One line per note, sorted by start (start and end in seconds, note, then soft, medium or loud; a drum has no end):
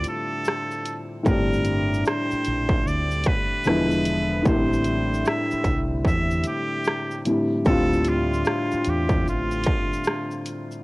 0.00 1.20 A2 medium
0.00 1.21 D3 medium
0.00 1.21 G3 medium
0.00 1.22 C4 medium
0.00 1.23 F4 medium
0.00 closed hi-hat medium
0.00 shaker soft
0.08 1.00 A4 loud
0.45 cross-stick loud
0.45 shaker medium
0.71 shaker soft
0.85 closed hi-hat medium
0.85 shaker soft
1.23 2.02 G1 loud
1.23 3.60 A2 medium
1.23 3.61 D3 medium
1.23 3.62 G3 medium
1.23 kick loud
1.23 shaker medium
1.27 3.62 C4 medium
1.27 3.63 D4 medium
1.27 2.02 A#4 loud
1.53 shaker medium
1.64 closed hi-hat medium
1.64 shaker soft
1.94 shaker medium
2.05 2.88 C5 loud
2.05 cross-stick loud
2.05 shaker medium
2.31 muted fingered electric bass stroke soft
2.31 shaker soft
2.45 2.84 A#1 medium
2.45 closed hi-hat medium
2.45 shaker soft
2.69 kick loud
2.86 3.24 D2 medium
2.86 3.29 D5 loud
2.86 shaker medium
3.11 shaker soft
3.24 4.46 B4 loud
3.24 kick loud
3.24 closed hi-hat medium
3.24 shaker soft
3.64 4.42 E1 medium
3.64 4.43 D3 medium
3.64 4.46 F3 medium
3.64 4.46 G#3 medium
3.64 4.46 B3 medium
3.64 4.47 E4 medium
3.64 cross-stick medium
3.64 shaker medium
3.91 shaker soft
4.05 closed hi-hat medium
4.05 shaker medium
4.43 5.22 A1 loud
4.43 7.20 A2 medium
4.43 7.21 D3 medium
4.43 7.22 G3 medium
4.43 kick loud
4.43 shaker medium
4.47 4.55 A#3 medium
4.47 7.23 E4 medium
4.47 5.29 C5 loud
4.53 7.25 C4 medium
4.73 shaker medium
4.85 closed hi-hat medium
4.85 shaker medium
5.14 shaker medium
5.25 5.83 E5 loud
5.25 cross-stick loud
5.25 shaker medium
5.51 muted fingered electric bass stroke soft
5.51 shaker soft
5.64 6.03 C2 loud
5.64 kick medium
5.64 closed hi-hat medium
5.64 shaker soft
6.05 6.43 E2 medium
6.05 6.44 E5 loud
6.05 kick medium
6.05 shaker medium
6.31 shaker soft
6.44 7.22 G4 loud
6.44 closed hi-hat medium
6.44 shaker medium
6.84 cross-stick loud
6.84 shaker medium
7.11 shaker soft
7.25 7.63 A2 soft
7.25 7.64 D3 soft
7.25 7.66 G3 soft
7.25 7.66 C4 soft
7.25 7.66 E4 medium
7.25 closed hi-hat medium
7.25 shaker soft
7.65 8.42 D2 loud
7.65 10.81 A2 medium
7.65 10.81 D3 medium
7.65 10.82 G3 medium
7.65 10.83 C4 medium
7.65 8.10 A4 loud
7.65 kick loud
7.65 shaker medium
7.70 10.83 F4 medium
7.93 shaker medium
8.04 8.91 F4 medium
8.04 closed hi-hat medium
8.04 shaker soft
8.34 shaker medium
8.45 cross-stick loud
8.45 shaker medium
8.71 muted fingered electric bass stroke soft
8.71 shaker medium
8.84 9.24 E2 loud
8.84 closed hi-hat medium
8.84 shaker soft
8.89 9.27 G4 medium
9.09 kick loud
9.09 shaker soft
9.27 9.64 A1 medium
9.27 10.43 F4 loud
9.27 shaker medium
9.51 shaker medium
9.64 kick loud
9.64 closed hi-hat medium
9.64 shaker soft
9.93 shaker medium
10.04 cross-stick loud
10.04 shaker medium
10.31 shaker soft
10.46 closed hi-hat medium
10.46 shaker medium
10.71 shaker soft